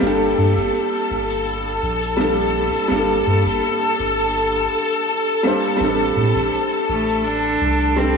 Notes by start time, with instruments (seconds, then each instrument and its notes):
0.00 sub bass G1, upright piano G3 A#3 D4, string section A4, shaker
0.07 upright piano A4
0.22 shaker
0.38 sub bass G2
0.57 sub bass G1, shaker
0.75 shaker
0.94 shaker
1.10 sub bass G1
1.30 shaker
1.47 shaker
1.66 shaker
1.82 sub bass A#1
2.02 shaker
2.17 upright piano G3 A#3 D4, shaker
2.21 upright piano A4
2.37 shaker
2.73 shaker
2.88 sub bass G1, upright piano G3 A#3, shaker
2.93 upright piano D4 A4
3.11 shaker
3.27 sub bass G2
3.46 sub bass G1, shaker
3.63 shaker
3.82 shaker
3.99 sub bass G1
4.19 shaker
4.36 shaker
4.55 shaker
4.91 shaker
5.08 shaker
5.28 shaker
5.43 upright piano G3 A#3 D4 C5
5.63 shaker
5.77 sub bass A1, upright piano G3 C4
5.81 upright piano D4 A4, shaker
6.00 shaker
6.16 sub bass A2
6.35 sub bass A1, shaker
6.52 shaker
6.71 shaker
6.89 sub bass A1, cello A3
7.07 shaker
7.24 cello D4, shaker
7.43 shaker
7.61 sub bass C2
7.80 shaker
7.96 upright piano G3 C4 D4 A4, cello C4, shaker